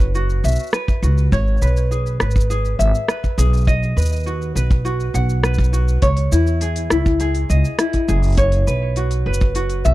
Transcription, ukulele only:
0, 0, Header, 1, 2, 480
1, 0, Start_track
1, 0, Tempo, 588235
1, 1076, Time_signature, 4, 2, 24, 8
1, 8113, End_track
2, 0, Start_track
2, 0, Title_t, "Ukulele"
2, 0, Program_c, 0, 24
2, 0, Note_on_c, 0, 66, 54
2, 0, Note_on_c, 0, 71, 61
2, 0, Note_on_c, 0, 73, 83
2, 112, Note_off_c, 0, 66, 0
2, 121, Note_on_c, 0, 66, 66
2, 363, Note_on_c, 0, 76, 64
2, 599, Note_off_c, 0, 76, 0
2, 602, Note_off_c, 0, 71, 0
2, 602, Note_on_c, 0, 71, 62
2, 832, Note_off_c, 0, 66, 0
2, 842, Note_on_c, 0, 66, 51
2, 1082, Note_off_c, 0, 73, 0
2, 1082, Note_on_c, 0, 73, 81
2, 1127, Note_off_c, 0, 66, 0
2, 1322, Note_off_c, 0, 71, 0
2, 1322, Note_on_c, 0, 71, 61
2, 1559, Note_on_c, 0, 68, 54
2, 1797, Note_off_c, 0, 71, 0
2, 1800, Note_on_c, 0, 71, 56
2, 2030, Note_off_c, 0, 68, 0
2, 2040, Note_on_c, 0, 68, 67
2, 2278, Note_on_c, 0, 76, 68
2, 2516, Note_off_c, 0, 73, 0
2, 2519, Note_off_c, 0, 71, 0
2, 2519, Note_on_c, 0, 71, 61
2, 2750, Note_off_c, 0, 68, 0
2, 2760, Note_on_c, 0, 68, 59
2, 2994, Note_off_c, 0, 76, 0
2, 2997, Note_on_c, 0, 75, 85
2, 3046, Note_off_c, 0, 68, 0
2, 3234, Note_off_c, 0, 71, 0
2, 3237, Note_on_c, 0, 71, 57
2, 3478, Note_on_c, 0, 66, 55
2, 3709, Note_off_c, 0, 71, 0
2, 3719, Note_on_c, 0, 71, 59
2, 3946, Note_off_c, 0, 66, 0
2, 3956, Note_on_c, 0, 66, 67
2, 4197, Note_on_c, 0, 78, 60
2, 4428, Note_off_c, 0, 71, 0
2, 4438, Note_on_c, 0, 71, 58
2, 4665, Note_off_c, 0, 66, 0
2, 4674, Note_on_c, 0, 66, 58
2, 4912, Note_off_c, 0, 75, 0
2, 4915, Note_on_c, 0, 73, 78
2, 4963, Note_off_c, 0, 66, 0
2, 4964, Note_off_c, 0, 78, 0
2, 4965, Note_off_c, 0, 71, 0
2, 5156, Note_on_c, 0, 64, 64
2, 5396, Note_on_c, 0, 68, 59
2, 5637, Note_off_c, 0, 64, 0
2, 5637, Note_on_c, 0, 64, 60
2, 5868, Note_off_c, 0, 68, 0
2, 5878, Note_on_c, 0, 68, 72
2, 6113, Note_off_c, 0, 73, 0
2, 6116, Note_on_c, 0, 75, 64
2, 6356, Note_off_c, 0, 64, 0
2, 6356, Note_on_c, 0, 64, 64
2, 6586, Note_off_c, 0, 68, 0
2, 6595, Note_on_c, 0, 68, 57
2, 6833, Note_off_c, 0, 68, 0
2, 6837, Note_on_c, 0, 73, 81
2, 6884, Note_off_c, 0, 75, 0
2, 7076, Note_on_c, 0, 71, 59
2, 7317, Note_on_c, 0, 66, 58
2, 7341, Note_off_c, 0, 64, 0
2, 7558, Note_off_c, 0, 71, 0
2, 7558, Note_on_c, 0, 71, 60
2, 7786, Note_off_c, 0, 66, 0
2, 7796, Note_on_c, 0, 66, 69
2, 8036, Note_on_c, 0, 76, 64
2, 8113, Note_off_c, 0, 66, 0
2, 8113, Note_off_c, 0, 71, 0
2, 8113, Note_off_c, 0, 73, 0
2, 8113, Note_off_c, 0, 76, 0
2, 8113, End_track
0, 0, End_of_file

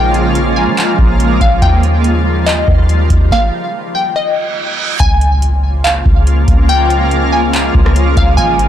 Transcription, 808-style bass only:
0, 0, Header, 1, 2, 480
1, 0, Start_track
1, 0, Tempo, 422535
1, 1841, Time_signature, 4, 2, 24, 8
1, 9864, End_track
2, 0, Start_track
2, 0, Title_t, "808-style bass"
2, 0, Program_c, 0, 38
2, 0, Note_on_c, 0, 34, 110
2, 762, Note_on_c, 0, 53, 99
2, 779, Note_off_c, 0, 34, 0
2, 1104, Note_off_c, 0, 53, 0
2, 1123, Note_on_c, 0, 34, 106
2, 1583, Note_off_c, 0, 34, 0
2, 1603, Note_on_c, 0, 34, 103
2, 1833, Note_off_c, 0, 34, 0
2, 1842, Note_on_c, 0, 39, 113
2, 2997, Note_off_c, 0, 39, 0
2, 3044, Note_on_c, 0, 39, 102
2, 3504, Note_off_c, 0, 39, 0
2, 3524, Note_on_c, 0, 39, 102
2, 3753, Note_off_c, 0, 39, 0
2, 5682, Note_on_c, 0, 37, 114
2, 6836, Note_off_c, 0, 37, 0
2, 6882, Note_on_c, 0, 37, 105
2, 7343, Note_off_c, 0, 37, 0
2, 7362, Note_on_c, 0, 37, 107
2, 8756, Note_off_c, 0, 37, 0
2, 8802, Note_on_c, 0, 37, 110
2, 9263, Note_off_c, 0, 37, 0
2, 9282, Note_on_c, 0, 37, 107
2, 9512, Note_off_c, 0, 37, 0
2, 9521, Note_on_c, 0, 32, 116
2, 9864, Note_off_c, 0, 32, 0
2, 9864, End_track
0, 0, End_of_file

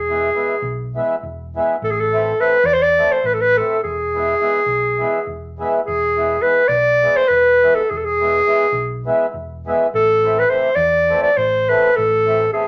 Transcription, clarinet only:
0, 0, Header, 1, 2, 480
1, 0, Start_track
1, 0, Tempo, 579710
1, 1510, Time_signature, 7, 3, 24, 8
1, 10497, End_track
2, 0, Start_track
2, 0, Title_t, "Clarinet"
2, 0, Program_c, 0, 71
2, 0, Note_on_c, 0, 68, 79
2, 750, Note_off_c, 0, 68, 0
2, 1526, Note_on_c, 0, 69, 81
2, 1581, Note_on_c, 0, 68, 80
2, 1594, Note_off_c, 0, 69, 0
2, 1659, Note_on_c, 0, 69, 89
2, 1672, Note_off_c, 0, 68, 0
2, 1992, Note_on_c, 0, 71, 82
2, 2005, Note_off_c, 0, 69, 0
2, 2202, Note_on_c, 0, 74, 105
2, 2214, Note_off_c, 0, 71, 0
2, 2263, Note_on_c, 0, 72, 94
2, 2276, Note_off_c, 0, 74, 0
2, 2339, Note_on_c, 0, 74, 95
2, 2351, Note_off_c, 0, 72, 0
2, 2582, Note_on_c, 0, 72, 81
2, 2595, Note_off_c, 0, 74, 0
2, 2704, Note_on_c, 0, 71, 83
2, 2717, Note_off_c, 0, 72, 0
2, 2765, Note_on_c, 0, 69, 70
2, 2777, Note_off_c, 0, 71, 0
2, 2826, Note_on_c, 0, 71, 92
2, 2838, Note_off_c, 0, 69, 0
2, 2958, Note_on_c, 0, 69, 80
2, 2971, Note_off_c, 0, 71, 0
2, 3171, Note_off_c, 0, 69, 0
2, 3176, Note_on_c, 0, 68, 83
2, 4605, Note_off_c, 0, 68, 0
2, 4844, Note_on_c, 0, 68, 81
2, 5318, Note_on_c, 0, 71, 86
2, 5331, Note_off_c, 0, 68, 0
2, 5533, Note_on_c, 0, 74, 104
2, 5545, Note_off_c, 0, 71, 0
2, 5936, Note_on_c, 0, 72, 92
2, 5948, Note_off_c, 0, 74, 0
2, 6031, Note_on_c, 0, 71, 85
2, 6043, Note_off_c, 0, 72, 0
2, 6416, Note_on_c, 0, 69, 77
2, 6428, Note_off_c, 0, 71, 0
2, 6541, Note_on_c, 0, 68, 68
2, 6554, Note_off_c, 0, 69, 0
2, 6603, Note_on_c, 0, 69, 58
2, 6615, Note_off_c, 0, 68, 0
2, 6666, Note_on_c, 0, 68, 91
2, 6679, Note_off_c, 0, 69, 0
2, 7500, Note_off_c, 0, 68, 0
2, 8242, Note_on_c, 0, 69, 96
2, 8606, Note_on_c, 0, 71, 81
2, 8618, Note_off_c, 0, 69, 0
2, 8696, Note_on_c, 0, 72, 87
2, 8708, Note_off_c, 0, 71, 0
2, 8905, Note_on_c, 0, 74, 111
2, 8917, Note_off_c, 0, 72, 0
2, 9289, Note_off_c, 0, 74, 0
2, 9294, Note_on_c, 0, 74, 83
2, 9413, Note_on_c, 0, 72, 90
2, 9426, Note_off_c, 0, 74, 0
2, 9684, Note_on_c, 0, 71, 90
2, 9696, Note_off_c, 0, 72, 0
2, 9904, Note_on_c, 0, 69, 108
2, 9916, Note_off_c, 0, 71, 0
2, 10372, Note_off_c, 0, 69, 0
2, 10377, Note_on_c, 0, 68, 76
2, 10497, Note_off_c, 0, 68, 0
2, 10497, End_track
0, 0, End_of_file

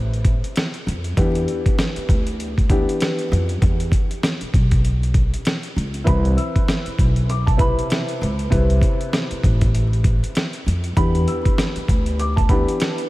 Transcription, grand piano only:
0, 0, Header, 1, 2, 480
1, 0, Start_track
1, 0, Key_signature, 1, "minor"
1, 0, Tempo, 612245
1, 916, Time_signature, 4, 2, 24, 8
1, 10263, End_track
2, 0, Start_track
2, 0, Title_t, "Grand piano"
2, 0, Program_c, 0, 0
2, 0, Note_on_c, 0, 48, 98
2, 0, Note_on_c, 0, 60, 86
2, 0, Note_on_c, 0, 64, 93
2, 0, Note_on_c, 0, 71, 114
2, 552, Note_off_c, 0, 48, 0
2, 554, Note_off_c, 0, 60, 0
2, 555, Note_off_c, 0, 64, 0
2, 556, Note_off_c, 0, 71, 0
2, 916, Note_on_c, 0, 52, 100
2, 918, Note_on_c, 0, 59, 88
2, 921, Note_on_c, 0, 62, 82
2, 924, Note_on_c, 0, 67, 107
2, 1915, Note_off_c, 0, 52, 0
2, 1916, Note_off_c, 0, 59, 0
2, 1918, Note_off_c, 0, 62, 0
2, 1919, Note_off_c, 0, 67, 0
2, 2111, Note_on_c, 0, 52, 93
2, 2114, Note_on_c, 0, 59, 93
2, 2116, Note_on_c, 0, 62, 84
2, 2119, Note_on_c, 0, 67, 101
2, 2677, Note_off_c, 0, 52, 0
2, 2678, Note_off_c, 0, 59, 0
2, 2680, Note_off_c, 0, 62, 0
2, 2681, Note_off_c, 0, 67, 0
2, 4736, Note_on_c, 0, 52, 94
2, 4739, Note_on_c, 0, 60, 89
2, 4742, Note_on_c, 0, 64, 89
2, 4744, Note_on_c, 0, 71, 110
2, 5745, Note_off_c, 0, 52, 0
2, 5747, Note_off_c, 0, 60, 0
2, 5748, Note_off_c, 0, 64, 0
2, 5749, Note_off_c, 0, 71, 0
2, 5936, Note_on_c, 0, 48, 89
2, 5939, Note_on_c, 0, 60, 84
2, 5942, Note_on_c, 0, 64, 84
2, 5944, Note_on_c, 0, 71, 110
2, 6509, Note_off_c, 0, 48, 0
2, 6511, Note_off_c, 0, 60, 0
2, 6512, Note_off_c, 0, 64, 0
2, 6514, Note_off_c, 0, 71, 0
2, 6664, Note_on_c, 0, 48, 96
2, 6667, Note_on_c, 0, 60, 88
2, 6670, Note_on_c, 0, 64, 92
2, 6672, Note_on_c, 0, 71, 116
2, 8232, Note_off_c, 0, 48, 0
2, 8234, Note_off_c, 0, 60, 0
2, 8235, Note_off_c, 0, 64, 0
2, 8236, Note_off_c, 0, 71, 0
2, 8596, Note_on_c, 0, 52, 100
2, 8599, Note_on_c, 0, 59, 87
2, 8601, Note_on_c, 0, 62, 86
2, 8604, Note_on_c, 0, 67, 111
2, 9595, Note_off_c, 0, 52, 0
2, 9596, Note_off_c, 0, 59, 0
2, 9598, Note_off_c, 0, 62, 0
2, 9599, Note_off_c, 0, 67, 0
2, 9792, Note_on_c, 0, 52, 93
2, 9794, Note_on_c, 0, 59, 94
2, 9797, Note_on_c, 0, 62, 85
2, 9800, Note_on_c, 0, 67, 102
2, 10263, Note_off_c, 0, 52, 0
2, 10263, Note_off_c, 0, 59, 0
2, 10263, Note_off_c, 0, 62, 0
2, 10263, Note_off_c, 0, 67, 0
2, 10263, End_track
0, 0, End_of_file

